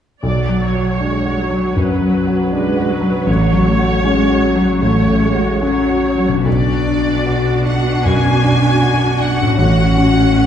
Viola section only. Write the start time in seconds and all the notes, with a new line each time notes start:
0.24 F#3 D5
0.62 C#5
1.01 G#3
1.40 F#3
1.78 F#3 B4
2.52 G#3 B4
2.90 F#3
3.28 F#3 C#5
3.66 A3
4.04 G#3
4.43 F#3
4.81 A3 C#5
5.21 G#3
5.62 F#3 C#5
6.46 D4 F#4
9.59 C#4